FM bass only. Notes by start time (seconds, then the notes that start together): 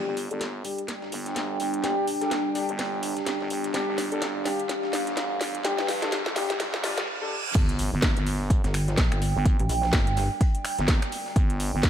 0.07 G1
0.31 G1
1.12 G1
1.60 G1
2.69 G1
3.40 G1
3.50 G1
3.74 G1
3.88 G1
4.12 G1
4.93 G1
5.41 G1
5.79 G2
6.12 G1
6.50 G1
6.98 A#1
7.55 G1
7.93 G1
8.17 G1
9.36 G1
10.79 G1
11.36 G1
11.74 G1